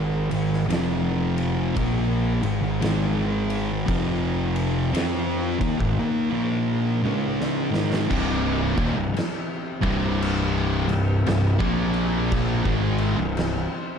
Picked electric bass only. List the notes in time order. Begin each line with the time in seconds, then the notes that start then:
0.00 G#1
0.31 G#1
0.70 F1
1.77 A#1
2.43 G#1
2.62 G#1
2.82 G#1
3.88 F1
4.93 F2
5.61 D#2
5.81 G#1
8.11 C1
8.77 D#1
8.96 C1
9.15 muted picked electric bass stroke
9.84 C1
10.88 C1
11.27 C1
11.61 A#1
12.65 G#1
13.17 C1